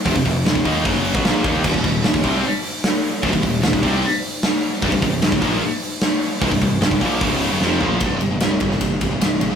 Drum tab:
CC |----------------|x---------------|----------------|----------------|
RD |----------------|----------------|----------------|----------------|
HH |o-o-o-o-o-o-o-o-|--o-o-o-o-o-o-o-|o-o-o-o-o-o-o-o-|o-o-o-o-o-o-o-o-|
SD |----o-------o---|----o-------o---|----o-------o---|----o-o-----o---|
FT |----------------|----------------|----------------|----------------|
BD |ooo--oo-o--o--o-|ooo--oo---------|ooo--oo---------|ooo--oo---------|

CC |----------------|----------------|
RD |----------------|x-x-x-x-x-x-x-x-|
HH |o-o-o-o-o-o-----|----------------|
SD |----o-------o---|----o--o----o---|
FT |--------------o-|----------------|
BD |ooo--oo-o-------|o-----o-o-o-----|